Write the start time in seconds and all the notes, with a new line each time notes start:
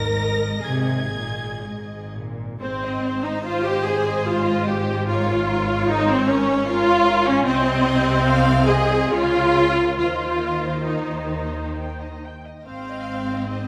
Already playing: G#1 G#2 A#4 D#5 A#6
0.64 G#1 C3 G#4 G#6
1.15 A#2
1.65 G#1 G#2
2.14 A#2
2.60 G#1 G#2 C4 C5
2.82 D#5
3.02 C5
3.23 D#4 D#5
3.43 F4 C5
3.63 G4 D#5
3.85 G#4 C5
4.05 D#5
4.26 F4 C5
4.46 D#5
4.67 G4 C5
4.87 D#5
5.06 F4 A#4 C#5
5.26 C#5
5.47 A#4 C#5
5.68 C#5
5.88 D#4 A#4
6.06 C4 C#5
6.25 C#4 A#4
6.45 C#5
6.65 F4 A#4
6.86 C#5
7.05 A#4
7.26 C#4 C#5
7.45 C2 C3 C4 D#5
7.66 C5
7.85 D#5
8.05 C5
8.24 D#5 F5
8.45 C5
8.66 G#4 D#5
8.89 C5
9.10 C#2 C#3 F4 C#5
9.33 A#4
9.56 C#5
9.77 A#4
9.98 D#2 D#3 F4 C5 D#5
10.21 C5
10.42 D#5
10.66 C5
10.87 D#4 D#5
11.11 C5
11.33 D#5
11.54 C5
11.77 G5
12.01 D#5
12.24 G5
12.45 D#5
12.65 G#1 G#2 C4 C5 F5
12.89 D#5
13.11 C5
13.31 D#5
13.50 C5 D#5